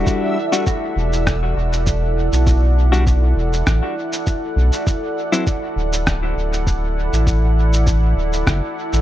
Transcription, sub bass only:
0.96 E1
1.57 E1
2.32 B1
3.36 E1
3.67 A1
4.56 B1
5.76 D1
6.36 D1
7.13 A1
8.17 D1
8.47 F#1
8.93 A1

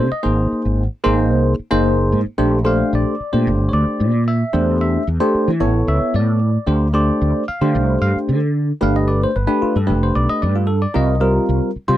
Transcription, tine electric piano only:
Already playing: C5
0.12 D#5
0.23 A#3 D#4 G#4 C5
1.04 A#3 D#4 G#4 C5
1.71 A#3 D#4 G#4 C5
2.38 A3 D4 G4 C5
2.65 A3 D4 G4 C5 F5
2.95 D5
3.33 A3 D4 G4 C5
3.69 C#5
3.73 D5
4.28 E5
4.53 A3 D4 G4 C5
4.81 E5
5.20 A3 D4 G4 C5
5.60 B3 E4 A4 C#5
5.88 E5
6.16 D5
6.67 A3 D4 G4 C5
6.93 A3 D4 G4 C5 D5
7.48 F5
7.61 A3 D4 G4 C5
8.02 F5
8.81 A3 D4 G4 B4 F5
8.96 D#5
9.08 D5
9.24 C5
9.36 B4
9.47 A3 D4 G4 B4
9.62 F4
9.77 A4
9.87 A3 D4 G4 B4
10.03 C5
10.16 D5
10.29 D#5
10.42 D5
10.56 F4
10.67 A4
10.82 D5
10.94 G3 C4 F4 A#4 D#5
11.21 G3 C4 F4 A#4
11.88 G3 C4 F4 C5

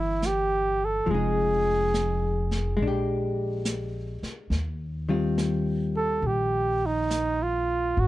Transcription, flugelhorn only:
Already playing: E4
0.26 G4
0.85 A4
1.11 G#4
5.97 A4
6.27 G4
6.86 D#4
7.43 F4
8.00 F#4

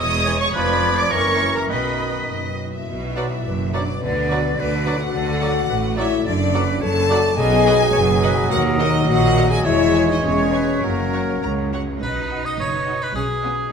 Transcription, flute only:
0.26 G#6
0.54 G#6
1.11 A#6
1.70 B6
3.47 B4
3.75 C#5
4.02 D5
4.60 B4
5.14 A4
5.69 B4
5.95 C#5
6.25 D5
6.53 B4
6.81 C#5
7.07 D5
7.35 D#5
7.92 C#5
8.21 B4
8.50 A#4
9.06 D#5
9.65 C#5
10.23 C#5
10.54 B4
10.84 A#4

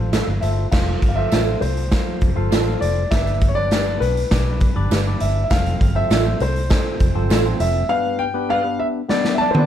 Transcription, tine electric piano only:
Already playing: F4 A4 C5 F5
0.42 F4 A4 C5 E5
0.72 F4 A4 C5 F5
1.18 F4 A4 C5 F5
1.47 F4 A4 C5 F5
1.91 F4 A4 C5 F5
2.36 F4 A4 C5 F5
2.65 F4 A4 C5 F5
3.11 G2 D4 G4 B4 D5
3.56 D4 G4 B4 D5
3.85 D4 G4 B4 D5
4.31 D4 G4 B4 D5
4.76 D4 G4 B4 D5
5.07 D4 G4 B4 D5
5.51 C4 F4 A4 C5
5.95 C4 F4 A4 C5
6.25 C4 F4 A4 C5
6.70 C4 F4 A4 C5
7.15 C4 F4 A4 C5
7.45 C4 F4 A4 C5
7.89 G2 B3 D4 G4 B4
8.34 B3 D4 G4 B4
8.64 B3 D4 G4 B4
9.09 B3 D4 G4 B4
9.54 B3 D4 G4 B4

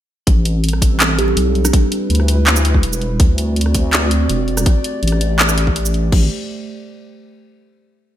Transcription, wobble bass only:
0.27 A1
1.37 B1
2.10 D2
2.83 E1
3.20 D2
4.30 E1
5.03 A1
6.12 A1

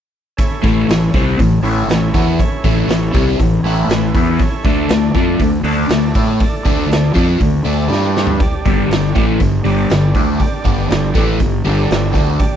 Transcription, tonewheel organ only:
0.37 C#4 E4 A4 C#5
1.62 C#4 E4 A4 C#5
2.39 C#4 E4 A4 C#5
3.63 C#4 E4 A4 B4
4.39 C#4 E4 A4 C#5
4.64 A3 D4 A4 D5
5.65 A3 D4 A4 D5
6.40 A3 D4 A4 D5
7.66 A3 D4 A4 D5
7.91 G3 D4 G4 D5
8.38 G3 D4 G4 D5
9.63 G3 D4 G4 D5
10.38 G3 D4 G4 D5
11.65 G3 D4 G4 A4
12.37 G3 D4 G4 D5

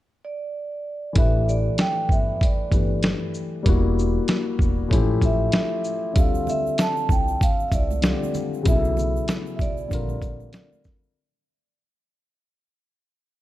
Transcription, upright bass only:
1.16 A1
2.09 G1
2.72 G1
3.66 E1
4.59 E1
4.91 A1
5.21 A1
6.16 D2
7.09 C2
7.72 C2
8.66 B1
9.59 B1
9.91 A#1
10.21 A#1

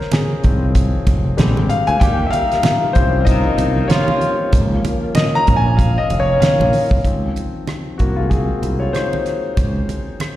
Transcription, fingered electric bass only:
0.45 C2
1.07 F1
1.39 A#1
1.58 G#1
1.89 D2
2.01 D#2
2.96 C2
3.58 C2
4.53 C#2
5.48 A#1
6.10 F1
6.42 muted fingered electric bass stroke
6.60 A#1
6.91 C2
7.05 C#2
8.00 C2
8.62 C2
9.57 C#2

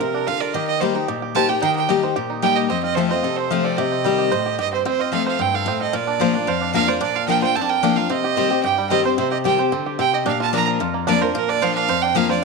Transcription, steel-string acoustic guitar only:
0.01 C3
0.28 D3
0.54 D#3
0.81 G3 A#3 D#4 G4
0.95 D#4 G4
1.08 A#2
1.35 G3 A#3 D#4 G4
1.49 D#4 G4
1.62 D#3
1.89 G3 A#3 D#4 G4
2.03 D#4 G4
2.16 A#2
2.42 G3 A#3 D#4 G4
2.70 F2
2.97 F3 A3 C4 F4
3.11 C4 F4
3.24 C3
3.51 F3 A3 C4 F4
3.78 C3
4.04 D#3 G3 C4 G4
4.32 A2
4.59 G2
4.85 F2
5.12 F3 A3 C4 F4
5.39 G2
5.66 A2
5.93 A#2
6.20 F3 A#3 D4 F4
6.34 D4 F4
6.47 F2
6.74 F3 A#3 D4 F4
6.87 D4 F4
7.01 A#2
7.28 F3 A#3 D4 F4
7.42 D4 F4
7.56 F2
7.83 F3 A#3 D4 F4
7.96 D4 F4
8.09 C3
8.36 D#3 G3 C4 G4
8.50 C4 G4
8.64 G2
8.90 D#3 G3 C4 G4
9.04 C4 G4
9.18 C3
9.44 D#3 G3 C4 G4
9.58 C4 G4
9.72 D3
9.99 C3
10.26 A#2
10.53 F3 A#3 D4 F4
10.80 F2
11.07 F3 A#3 D4 F4
11.21 D4 F4
11.35 A#2
11.62 F3 A#3 D4 F4
11.89 F2
12.15 F3 A#3 D4 F4
12.29 D4 F4

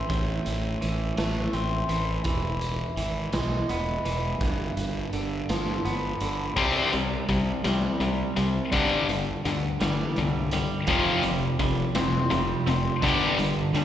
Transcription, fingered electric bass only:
0.10 A1
0.47 A1
0.84 A1
1.19 A1
1.53 A1
1.89 A1
2.26 E1
2.97 G#1
3.33 B1
3.69 E1
4.06 E1
4.42 G1
4.77 G1
5.13 G1
5.50 G1
5.85 G1
6.21 G1
6.57 C2
6.94 C2
7.29 C2
7.65 C2
8.00 C2
8.37 C2
8.73 G1
9.09 G1
9.45 D2
9.81 G1
10.18 C2
10.88 F1
11.25 F1
11.59 F1
11.94 F1
12.32 F1
12.67 F1
13.03 G1
13.38 G1
13.73 D2

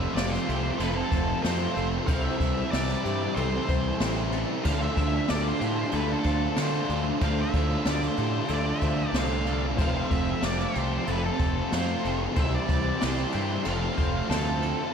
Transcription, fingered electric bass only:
0.15 F1
0.49 C2
0.79 F1
1.12 F1
1.45 F2
1.77 F1
2.09 C2
2.40 C2
2.73 C2
3.05 G2
3.36 C2
3.69 C2
4.00 A1
4.66 D2
4.97 D2
5.30 D2
5.61 A2
5.93 D2
6.25 D2
6.57 D3
6.89 D2
7.22 D2
7.54 D2
7.86 D2
8.18 A2
8.49 D2
8.83 D2
9.13 C2
9.79 F1
10.11 F1
10.43 F1
10.76 C2
11.08 F1
11.40 F1
11.72 F2
12.05 F1
12.37 C2
12.69 C2
13.03 C2
13.34 G2
13.66 F1
13.98 F1
14.29 D2

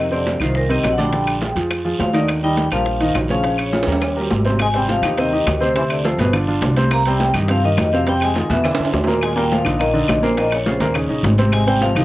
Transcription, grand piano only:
0.11 C3 C4 C5
0.40 D#3 D#4 F4
0.69 C3 C4 C5
0.97 D3 D4 D5
1.12 D3 D4 D5
1.42 F3 F4 G#4
1.56 F3 F4 G#4
1.85 F3 F4 G#4
2.13 D#3 D#4 D#5
2.43 D#3 D#4 D#5
2.72 G3 G4 A#4
3.00 D#3 D#4 D#5
3.30 C#3 C#4 C#5
3.44 C#3 C#4 C#5
3.73 F3 F4 G#4
3.87 G3 G4 A#4
4.16 G3 G4 A#4
4.45 C3 C4 C5
4.74 C3 C4 C5
5.03 D#3 D#4 G4
5.18 C3 C4 C5
5.32 D#3 D#4 G4
5.60 C3 C4 C5
5.75 C3 C4 C5
6.04 F3 F4 A4
6.19 B2 B3 B4
6.33 D3 D4 F4
6.47 D3 D4 F4
6.76 C3 C4 C5
7.06 C3 C4 C5
7.35 D#3 D#4 G4
7.49 C3 C4 C5
7.64 D#3 D#4 G4
7.93 C3 C4 C5
8.07 C3 C4 C5
8.36 D#3 D#4 F4
8.49 B2 B3 B4
8.64 D3 D4 E4
8.78 D3 D4 E4
9.07 A#2 A#3 A#4
9.36 A#2 A#3 A#4
9.64 D3 D4 D#4
9.80 A#2 A#3 A#4
9.94 D3 D4 D#4
10.22 A#2 A#3 A#4
10.37 A#2 A#3 A#4
10.66 C#3 C#4 F4
10.80 A#2 A#3 A#4
10.94 C#3 C#4 D#4
11.09 C#3 C#4 D#4
11.38 C3 C4 C5
11.67 C3 C4 C5
11.96 D#3 D#4 G4

